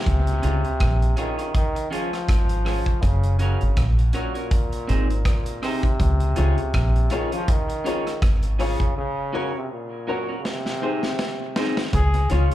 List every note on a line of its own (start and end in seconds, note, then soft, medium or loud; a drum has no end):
0.00 1.14 C3 loud
0.06 0.40 C#2 medium
0.06 kick loud
0.06 closed hi-hat medium
0.27 closed hi-hat medium
0.42 0.63 C#2 medium
0.42 0.62 C#4 medium
0.42 0.62 F4 medium
0.42 0.62 G#4 medium
0.42 0.62 C#5 medium
0.42 closed hi-hat medium
0.64 closed hi-hat soft
0.80 1.14 A#1 medium
0.80 kick loud
0.80 cross-stick loud
0.80 closed hi-hat medium
1.02 closed hi-hat soft
1.17 1.52 D#3 loud
1.17 1.36 C#4 medium
1.17 1.36 F4 medium
1.17 1.36 G#4 medium
1.17 1.36 C#5 medium
1.17 closed hi-hat medium
1.38 1.50 C#4 soft
1.38 1.50 F4 soft
1.38 1.50 G#4 soft
1.38 1.49 C#5 medium
1.38 closed hi-hat medium
1.55 1.89 D#3 loud
1.55 kick loud
1.55 closed hi-hat medium
1.75 muted clean electric guitar stroke soft
1.75 closed hi-hat medium
1.91 3.04 F3 loud
1.91 2.10 C#4 medium
1.91 2.10 F4 medium
1.91 2.10 G#4 medium
1.91 2.11 C#5 medium
1.91 closed hi-hat medium
2.13 cross-stick medium
2.13 closed hi-hat soft
2.29 2.81 G#1 medium
2.29 kick loud
2.29 cross-stick loud
2.29 closed hi-hat medium
2.49 closed hi-hat medium
2.65 2.84 C#4 medium
2.65 2.84 F4 medium
2.65 2.85 G#4 medium
2.65 2.85 C#5 medium
2.65 cross-stick medium
2.65 open hi-hat medium
2.86 kick medium
2.86 closed hi-hat soft
3.02 3.55 F#1 medium
3.02 3.40 C#3 medium
3.02 kick medium
3.02 closed hi-hat medium
3.23 closed hi-hat medium
3.39 3.85 C#3 medium
3.39 3.58 C#4 medium
3.39 3.58 F#4 medium
3.39 3.59 A#4 medium
3.39 3.59 C#5 medium
3.39 closed hi-hat medium
3.61 3.76 G#1 medium
3.61 closed hi-hat soft
3.77 4.10 A#1 medium
3.77 kick loud
3.77 cross-stick loud
3.77 closed hi-hat medium
3.99 closed hi-hat soft
4.13 5.22 A#2 medium
4.13 4.32 C#4 medium
4.13 4.33 F#4 medium
4.13 4.33 A#4 medium
4.13 4.33 C#5 loud
4.13 closed hi-hat medium
4.34 4.47 C#4 soft
4.34 4.47 F#4 soft
4.34 4.46 A#4 soft
4.34 4.46 C#5 medium
4.34 closed hi-hat soft
4.51 kick loud
4.51 closed hi-hat medium
4.72 closed hi-hat medium
4.88 5.22 G#1 medium
4.88 5.07 C4 medium
4.88 5.07 D#4 medium
4.88 5.07 G#4 medium
4.88 5.07 C5 medium
4.88 closed hi-hat medium
5.10 closed hi-hat medium
5.25 5.60 A#2 medium
5.25 kick loud
5.25 cross-stick loud
5.25 closed hi-hat medium
5.46 closed hi-hat medium
5.62 7.14 C3 medium
5.62 5.81 C4 medium
5.62 5.81 D#4 medium
5.62 5.82 G#4 medium
5.62 5.82 C5 medium
5.62 cross-stick medium
5.62 open hi-hat medium
5.83 kick medium
5.83 closed hi-hat soft
6.00 6.33 C#2 loud
6.00 kick medium
6.00 closed hi-hat medium
6.20 closed hi-hat soft
6.36 6.56 C#2 medium
6.36 6.55 C#4 medium
6.36 6.58 C#4 medium
6.36 6.55 F4 loud
6.36 6.58 F4 medium
6.36 6.56 G#4 medium
6.36 6.58 G#4 medium
6.36 6.56 C#5 loud
6.36 6.59 C#5 loud
6.36 closed hi-hat medium
6.58 closed hi-hat soft
6.74 7.07 A#1 medium
6.74 kick loud
6.74 cross-stick loud
6.74 closed hi-hat medium
6.96 closed hi-hat soft
7.10 7.35 D#3 medium
7.10 7.29 C#4 medium
7.10 7.32 C#4 loud
7.10 7.30 F4 medium
7.10 7.32 F4 medium
7.10 7.30 G#4 medium
7.10 7.31 G#4 medium
7.10 7.30 C#5 medium
7.10 7.31 C#5 loud
7.10 closed hi-hat medium
7.31 7.51 F3 loud
7.31 7.44 C#4 soft
7.31 7.44 F4 medium
7.31 7.43 G#4 medium
7.31 7.39 G#4 soft
7.31 7.43 C#5 medium
7.31 7.39 C#5 soft
7.31 closed hi-hat soft
7.48 8.23 D#3 medium
7.48 kick loud
7.48 closed hi-hat medium
7.69 muted clean electric guitar stroke soft
7.69 closed hi-hat medium
7.84 8.04 C#4 medium
7.84 8.06 C#4 medium
7.84 8.04 F4 medium
7.84 8.06 F4 medium
7.84 8.04 G#4 loud
7.84 8.05 G#4 medium
7.84 8.04 C#5 loud
7.84 8.05 C#5 loud
7.84 closed hi-hat medium
8.07 8.13 G#4 soft
8.07 8.13 C#5 soft
8.07 cross-stick medium
8.07 closed hi-hat soft
8.22 8.74 G#1 medium
8.22 kick loud
8.22 cross-stick loud
8.22 closed hi-hat loud
8.43 closed hi-hat medium
8.59 8.95 C#3 loud
8.59 8.78 C#4 medium
8.59 8.80 C#4 medium
8.59 8.78 F4 medium
8.59 8.81 F4 medium
8.59 8.78 G#4 medium
8.59 8.81 G#4 medium
8.59 8.79 C#5 medium
8.59 8.81 C#5 loud
8.59 open hi-hat medium
8.80 kick medium
8.80 closed hi-hat soft
8.97 9.51 C#3 loud
9.33 9.52 C#4 medium
9.33 9.55 C#4 medium
9.33 9.52 F#4 medium
9.33 9.55 F#4 medium
9.33 9.52 A#4 loud
9.33 9.55 A#4 medium
9.33 9.53 C#5 loud
9.33 9.55 C#5 loud
9.55 9.70 C3 medium
9.72 10.36 A#2 medium
10.07 10.26 C#4 medium
10.07 10.29 C#4 medium
10.07 10.27 F#4 medium
10.07 10.29 F#4 medium
10.07 10.27 A#4 medium
10.07 10.28 A#4 medium
10.07 10.27 C#5 medium
10.07 10.28 C#5 loud
10.29 10.41 C#4 soft
10.29 10.40 F#4 soft
10.29 10.40 A#4 soft
10.29 10.36 A#4 soft
10.29 10.40 C#5 medium
10.29 10.36 C#5 soft
10.40 10.48 C#3 medium
10.45 11.57 C3 medium
10.45 snare medium
10.65 muted clean electric guitar stroke soft
10.65 snare medium
10.82 11.01 C4 medium
10.82 11.03 C4 medium
10.82 11.03 D#4 medium
10.82 11.01 D#4 medium
10.82 11.02 G#4 medium
10.82 11.01 G#4 medium
10.82 11.02 C5 loud
10.82 11.01 C5 medium
11.03 11.10 G#4 soft
11.03 11.10 C5 soft
11.03 snare medium
11.19 snare medium
11.56 11.77 C4 medium
11.56 11.75 C4 medium
11.56 11.77 D#4 medium
11.56 11.75 D#4 medium
11.56 11.78 G#4 medium
11.56 11.75 G#4 medium
11.56 11.78 C5 medium
11.56 11.76 C5 medium
11.56 snare loud
11.77 snare medium
11.93 12.27 C#2 loud
11.93 12.28 G#4 loud
11.93 kick loud
11.93 closed hi-hat medium
12.14 closed hi-hat medium
12.30 12.50 C#2 medium
12.30 12.49 C#4 medium
12.30 12.51 C#4 loud
12.30 12.49 F4 medium
12.30 12.52 F4 medium
12.30 12.55 F4 loud
12.30 12.49 G#4 loud
12.30 12.52 G#4 medium
12.30 12.50 C#5 loud
12.30 12.52 C#5 loud
12.30 closed hi-hat medium
12.51 closed hi-hat soft